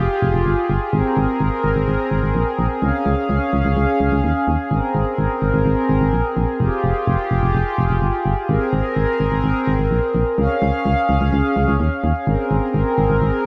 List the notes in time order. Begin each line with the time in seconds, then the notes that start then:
Already playing: F4 G4 G#4
0.22 F1
0.34 F1
0.46 G1
0.70 G1
0.93 G#1 C4 A#4
1.17 G#1
1.41 G#1
1.64 G#1
1.76 G#1
1.88 G#1
2.11 G#1
2.23 G#1
2.35 A#1
2.59 A#1
2.82 C#2 C#4 F5
3.06 C#2
3.29 C#2
3.53 C#2
3.65 C#2
3.77 C#2
4.00 C#2
4.12 C#2
4.24 D#2
4.48 D#2
4.71 G#1 C4 A#4
4.95 G#1
5.18 G#1
5.42 G#1
5.54 G#1
5.66 G#1
5.89 G#1
6.01 G#1
6.13 A#1
6.37 A#1
6.60 F1 F4 G4
6.84 F1
7.07 F1
7.31 F1
7.43 F1
7.55 F1
7.78 F1
7.90 F1
8.02 G1
8.26 G1
8.49 G#1 C4 G#4 A#4
8.73 G#1
8.97 G#1
9.20 G#1
9.32 G#1
9.44 G#1
9.67 G#1
9.79 G#1
9.91 A#1
10.15 A#1
10.38 C#2 C#4 G#4 F5
10.62 C#2
10.86 C#2
11.09 C#2
11.21 C#2
11.33 C#2
11.56 C#2
11.68 C#2
11.80 D#2
12.04 D#2
12.27 G#1 C4 G#4 A#4
12.51 G#1
12.74 G#1
12.98 G#1
13.10 G#1
13.22 G#1